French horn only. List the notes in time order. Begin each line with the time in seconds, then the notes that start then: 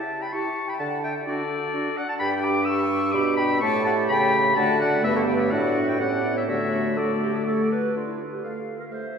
0.33 E4
1.27 D4
1.74 D4
2.21 D4
3.15 D4
3.61 A3
4.56 A3
5.04 B3
5.51 D4
6.00 C#4
6.24 B3
6.48 A3
6.98 A3
8.44 A3
8.91 A3